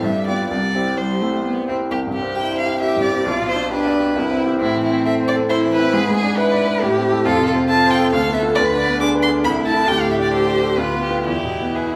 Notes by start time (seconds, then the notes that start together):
0.03 G2 G3 E5
0.26 B3 F4 G4 D5
0.49 C2 G3 D5
0.75 C4 E4 G4
0.97 G3 C5
1.21 A3 C4 E4 G4
1.44 B3
1.68 C4 E4 G4
1.91 C2 G4
2.07 G2
2.13 G4
2.22 C4
2.35 E4 G4 G5
2.52 C5
2.58 F5
2.66 G4
2.80 E4 G4 E5
2.96 G2
3.03 D5
3.11 C4
3.26 B1 F4
3.40 B2
3.48 C5
3.55 D4
3.71 D4 G4 B4
3.86 D5
4.00 G4
4.15 C2 E4
4.30 C4
4.45 E4 G4
4.61 A2 C4 E4
4.75 E3
4.83 E4
4.90 C4
5.05 A4 E5
5.20 C5
5.28 D5
5.35 A4
5.49 E4 C5
5.64 E3
5.72 B4
5.79 C4
5.93 G#2 G#4
6.09 G#3
6.17 G#4
6.23 D4
6.37 E4 B4
6.52 D5
6.67 B4
6.82 A2 G4
6.96 C4
7.11 E4 A4
7.25 F2 F4 A4
7.40 C3
7.47 A4
7.55 C4
7.69 F4 A4 A5
7.83 C5
7.90 G5
7.99 A4
8.12 D2 A4 F5
8.27 B3
8.34 E5
8.42 F4 A4
8.55 D2 B4 D5
8.72 D3
8.78 D5
8.86 B3
9.01 D4 G#4 D6
9.15 B4
9.22 C6
9.29 G#4
9.44 C2 E4 B5
9.58 A3
9.66 A5
9.72 E4 A4
9.87 D2 G4 G5
10.00 A2 F5
10.11 E5
10.18 D4
10.22 D5
10.33 A4 C5
10.47 D5
10.62 A4
10.77 D2 F4 B4
10.94 B3
11.02 G4
11.10 F4 B4
11.26 E2 E4 G4
11.44 B2
11.60 B3
11.76 G#4 B4
11.92 E4